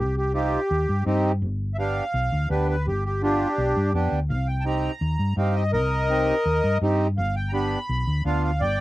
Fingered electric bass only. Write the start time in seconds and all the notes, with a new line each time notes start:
0.00 C2
0.71 D#2
0.89 G2
1.06 G2
1.42 G1
2.14 B1
2.32 D2
2.50 D2
2.87 G1
3.58 B1
3.77 G2
3.94 F2
4.12 D2
4.30 C2
5.01 D#2
5.19 G2
5.37 G2
5.73 C2
6.46 D#2
6.64 G2
6.81 G2
7.18 G1
7.89 B1
8.07 D2
8.25 D2
8.61 G1